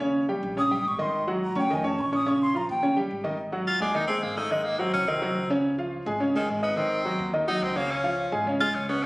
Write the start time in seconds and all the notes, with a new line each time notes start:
Already playing: D#2
0.00 C#3 C#4 C#5
0.29 G3 G4 G5
0.43 A#1
0.57 C#3 C#4 C#5 D#6
0.71 G3 G4 G5
0.85 G#1 C#6
0.98 D#3 D#4 D#5 C6
1.27 F#3 F#4 F#5
1.44 A#5
1.55 F1 C#4 C#5 G5 C#6
1.70 D#3 D#4 D#5 G#5
1.84 C#4 C#5 A5 C#6
1.98 A#1 C#6
2.12 C#4 C#5 C#6 D#6
2.26 C#3 C#4 C#5 C#6
2.42 C6
2.54 F3 F4 F5 A#5
2.69 D#2 G5
2.82 C#3 C#4 C#5
2.96 G3 G4 G5
3.11 G#1
3.24 D#3 D#4 D#5
3.52 F#3 F#4 F#5
3.68 F4
3.80 D#2 G#3 D4 G#4 G#5
3.94 D#3 D#4 D#5
4.08 G#3 C4 G#4 G#5
4.23 G#1 A#3
4.37 A3 D#4 D#5 D#6
4.51 D#3 G#3 D#4 D#5
4.64 A#3
4.79 F#3 C4 F#4 F#5
4.93 C2 C#4
5.08 D#3 C4 D#4 D#5
5.22 F#3 F#4 F#5
5.35 C#2
5.50 C#3 C#4 C#5
5.78 F3 F4 F5
6.06 G#1 G#3 G#4 G#5
6.20 C#3 C#4 C#5
6.35 D#3 G#3 G#4 G#5
6.49 G#1 G#3
6.62 B3 D#4 D#5 D#6
6.77 D#3 C4 D#4 D#5
7.05 F#3 F#4 F#5
7.19 D#2
7.33 D#3 D#4 D#5
7.48 F#3 D#4 F#4 F#5
7.62 C#2 C4
7.76 C#3 A#3 C#4 C#5
7.91 C#4
8.04 F3 F4 F5
8.32 G#1 G#3 G#4 G#5
8.46 C#3 C#4 C#5
8.61 G#3 F4 G#4 G#5
8.75 C#2 C#4
8.89 B3 C#4 C#5 C#6